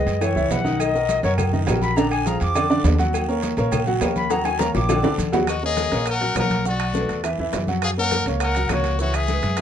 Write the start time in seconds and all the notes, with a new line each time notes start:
Already playing: G#3 G#4 B4 D#5
0.06 F#2, high conga, low agogo, short guiro, maracas
0.21 E3 E4 C#5 E5, cowbell, high conga, low agogo, long guiro, claves, maracas
0.36 C#2 E3 E4 E5, high conga, maracas
0.51 B1 F#5, cowbell, high conga, low timbale, low agogo, short guiro, maracas
0.64 D#3 D#4 D#5, high conga, short guiro, maracas
0.80 D#5, cowbell, high conga, low agogo, long guiro, claves, maracas
0.94 F#3 F#4 A#4, high conga, maracas
1.09 cowbell, high conga, low timbale, low agogo, short guiro, maracas
1.23 F#2 F#3 F#4 A#4 C#5, high conga, low agogo, short guiro, maracas
1.38 cowbell, high conga, low conga, low agogo, long guiro, claves, maracas
1.53 D#3 D#4 D#5, high conga, low conga, maracas
1.67 A#1 F#3 F#4 A#4, cowbell, high conga, low timbale, low agogo, short guiro, claves, maracas
1.82 B5, high conga, short guiro, maracas
1.96 D3 D4 D5 A#5, cowbell, high conga, low agogo, long guiro, maracas
2.11 G#5, high conga, low agogo, claves, maracas
2.26 F3 F4 G#4 A#5, cowbell, high conga, low timbale, short guiro, maracas
2.40 F2 D6, high conga, low agogo, short guiro, maracas
2.55 D3 D4 D5, cowbell, low agogo, long guiro, claves, maracas
2.70 D3 D4 D5, high conga, maracas
2.84 D#2, cowbell, high conga, low timbale, low agogo, short guiro, maracas
2.98 F#3 F#4 F#5, high conga, short guiro, maracas
3.13 cowbell, high conga, low agogo, long guiro, claves, maracas
3.28 A#3 A#4 C#5, maracas
3.42 cowbell, high conga, low timbale, low agogo, short guiro, maracas
3.57 A#1 A#3 A#4 C#5, high conga, low agogo, short guiro, maracas
3.71 cowbell, high conga, low conga, low agogo, long guiro, claves, maracas
3.87 F#3 F#4 F#5, high conga, maracas
4.01 D#2 A#3 A#4 C#5, cowbell, high conga, low timbale, low agogo, short guiro, claves, maracas
4.16 B5, high conga, short guiro, maracas
4.30 F#3 F#4 F#5 A#5, cowbell, high bongo, low agogo, long guiro, maracas
4.45 G#5, high bongo, high conga, low agogo, claves, maracas
4.59 A#3 A#4 C#5 A#5, cowbell, high bongo, high conga, low timbale, short guiro, maracas
4.75 A#1 D6, low bongo, high conga, low agogo, short guiro, maracas
4.89 D3 D4 D5, cowbell, low bongo, low agogo, long guiro, claves, maracas
5.03 D2 D3 D4 D5, low bongo, high timbale, maracas
5.18 D#2, cowbell, high conga, low agogo, short guiro, maracas
5.32 F#3 F#4 F#5, low bongo, high conga, low timbale, short guiro, maracas
5.47 F#4 D#5, high bongo, high conga, high timbale, long guiro, claves, maracas
5.63 A#3 G#4 A#4 C#5 D#5, high conga
5.77 high bongo, high conga, high timbale, short guiro, maracas
5.92 A#1 A#3 A#4 C#5, high timbale, short guiro, maracas
6.06 high bongo, high conga, high timbale, long guiro, claves, maracas
6.10 A#4 F#5
6.21 F#3 F#4 F#5, high conga, high timbale
6.35 B1 A#3 A#4 C#5, high bongo, low bongo, high conga, high timbale, low timbale, short guiro, claves, maracas
6.39 F#5
6.50 high conga, high timbale, short guiro, maracas
6.65 F#3 F#4 D5 F#5, high bongo, high conga, long guiro, maracas
6.80 high timbale, claves
6.94 A3 A4 B4, high bongo, high conga, short guiro, maracas
7.09 E2, high bongo, high timbale, short guiro, maracas
7.23 E3 E4 E5, high bongo, high conga, high timbale, long guiro, claves, maracas
7.38 E2 E3 E4 E5, high bongo, high conga
7.53 F#2, high bongo, low bongo, high conga, high timbale, low timbale, short guiro, maracas
7.67 F#3 F#4 F#5, high bongo, high conga, short guiro, maracas
7.82 G#4 F5, high bongo, high timbale, long guiro, claves, maracas
7.97 A#3 A#4 C#5 F#5
8.11 high bongo, high conga, high timbale, short guiro, maracas
8.26 C#2 A#3 A#4 C#5, high timbale, short guiro, maracas
8.40 A#4 F#5, high bongo, high conga, high timbale, long guiro, claves, maracas
8.55 F#3 F#4 F#5, high conga, high timbale, maracas
8.69 C#2 A#3 F#4 A#4 C#5, high bongo, low bongo, high conga, high timbale, short guiro, claves, maracas
8.84 high conga, high timbale, short guiro, maracas
8.99 E3 E4 F#4 C#5 E5, high bongo, high conga, long guiro, maracas
9.14 G#4 E5, high conga, high timbale, claves, maracas
9.28 G#3 G#4 B4, high bongo, high conga, short guiro, maracas
9.42 F#2, high bongo, high conga, high timbale, short guiro, maracas
9.57 high bongo, high timbale, long guiro, claves, maracas